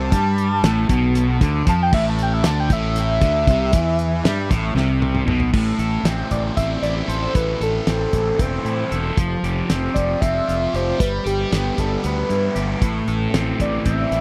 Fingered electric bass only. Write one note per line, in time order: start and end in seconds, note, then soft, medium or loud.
0.00 0.10 C2 loud
0.12 0.60 G2 loud
0.63 0.87 A1 loud
0.89 1.37 B1 medium
1.41 1.65 D2 medium
1.67 1.91 F2 loud
1.93 2.41 A1 loud
2.43 2.68 D2 loud
2.70 3.18 A1 medium
3.22 3.46 D2 medium
3.47 3.71 C2 loud
3.73 4.21 E2 loud
4.25 4.49 G2 loud
4.51 4.74 A1 medium
4.75 5.24 C2 medium
5.27 5.53 B1 loud
5.53 5.71 A1 medium
5.79 5.97 A1 medium
6.03 6.22 A1 medium
6.31 6.49 A1 medium
6.57 6.75 A1 medium
6.82 7.00 A1 medium
7.08 7.26 A1 medium
7.35 7.53 A1 loud
7.60 7.79 A1 medium
7.87 8.05 A1 medium
8.13 8.31 A1 medium
8.39 8.57 E1 medium
8.65 8.83 A2 medium
8.92 9.09 E1 medium
9.17 9.35 F1 medium
9.43 9.61 F1 medium
9.70 9.87 F1 medium
9.96 10.14 F1 medium
10.22 10.40 F1 medium
10.48 10.66 F1 medium
10.74 10.92 F1 medium
11.00 11.18 G1 medium
11.25 11.43 G1 medium
11.52 11.70 G1 medium
11.78 11.96 G1 medium
12.05 12.22 D2 medium
12.30 12.48 G2 medium
12.56 12.74 G1 medium
12.81 12.99 A1 medium
13.08 13.26 A1 medium
13.33 13.51 A1 medium
13.60 13.78 A1 medium
13.86 14.04 A1 medium
14.11 14.21 A1 medium